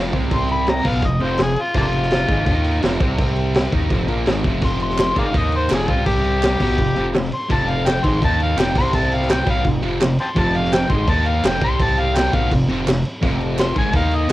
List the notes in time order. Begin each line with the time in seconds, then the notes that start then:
Already playing: F1 F2 C3 F3 F5
0.13 C2 C3 G3 C4, kick, crash
0.31 C6, kick, crash
0.49 B5, crash
0.67 A#5, snare, crash
0.84 B1 B2 F#3 B3 F5, kick, crash
1.02 F1 F2 C3, kick, crash
1.07 D#5
1.20 F1 F2 C3 F3 C5, crash
1.38 F1 F2 C3, snare, crash
1.42 G#4
1.56 crash
1.61 F4
1.74 F1 F2 C3 F3 A#3 D4 F4, kick, crash
1.93 crash
2.03 snare
2.11 snare, crash
2.28 G#1 G#2 D#3 G#3, kick, crash
2.46 D#2 D#3 A#3 D#4, kick, crash
2.64 crash
2.81 F1 F2 C3 F3, snare, crash
3.00 C2 C3 G3 C4, kick, crash
3.18 kick, crash
3.36 crash
3.54 snare, crash
3.72 D#2 D#3 A#3 D#4, kick, crash
3.89 F1 F2 C3 F3, kick, crash
4.07 A#1 A#2 F3 A#3, crash
4.26 G#1 G#2 D#3 G#3, snare, crash
4.44 F1 F2 C3 F3, kick, crash
4.61 F1 F2 C3 F3, kick, crash
4.65 C6
4.80 C6, crash
4.91 snare
4.98 C6, snare, clap, crash
5.15 G#1 G#2 D#3 G#3 A#4 D5 F5, kick, crash
5.32 D#2 D#3 A#3 D#4, kick, crash
5.37 D#5
5.52 crash
5.56 C5
5.70 F1 F2 C3 F3, snare, clap, crash
5.75 G#4
5.88 C2 C3 G3 C4 F4, kick, crash
6.06 G4, kick, crash
6.24 crash
6.42 snare, clap, crash
6.60 B1 B2 F#3 B3, kick, crash
6.78 F1 F2 C3, kick, crash
6.95 F1 F2 C3 F3, crash
7.13 F1 F2 C3, snare, clap, crash
7.32 C6, crash
7.49 F1 F2 C3 F3, kick, crash
7.53 A5
7.68 F5, crash
7.86 G5, snare, clap, crash
8.04 G#1 G#2 D#3 G#3 C6, kick, crash
8.21 D#2 D#3 A#3 D#4 A5, kick, crash
8.40 F5, crash
8.57 F1 F2 C3 F3, snare, clap, crash
8.61 G5
8.75 C2 C3 G3 C4 C6, kick, crash
8.93 A5, kick, crash
9.12 F5, crash
9.22 snare
9.28 G5, snare, clap, crash
9.45 B1 B2 F#3 B3, kick, crash
9.50 F5
9.64 F1 F2 C3, kick, crash
9.82 F1 F2 C3 F3, crash
10.00 F1 F2 C3, snare, clap, crash
10.18 G5 A5 C6, crash
10.35 F1 F2 C3 F3, kick, crash
10.40 A5
10.55 F5, crash
10.65 snare
10.72 G5, snare, clap, crash
10.90 G#1 G#2 D#3 G#3 C6, kick, crash
11.07 D#2 D#3 A#3 D#4 A5, kick, crash
11.26 F5, crash
11.44 F1 F2 C3 F3 G5, snare, clap, crash
11.62 C2 C3 G3 C4 C6, kick, crash
11.80 A5, kick, crash
11.98 F5, crash
12.15 G5, snare, clap, crash
12.33 B1 B2 F#3 B3 F5, kick, crash
12.51 F1 F2 C3, kick, crash
12.68 F1 F2 C3 F3, crash
12.86 F1 F2 C3, snare, clap, crash
13.05 crash
13.21 F1 F2 C3 F3, kick, crash
13.40 crash
13.58 C6, snare, clap, crash
13.76 G#1 G#2 D#3 G#3 G#5, kick, crash
13.91 D#2 D#3 A#3 D#4, kick, crash
13.96 F5
14.11 crash
14.16 D#5
14.28 F2 C3 F3, crash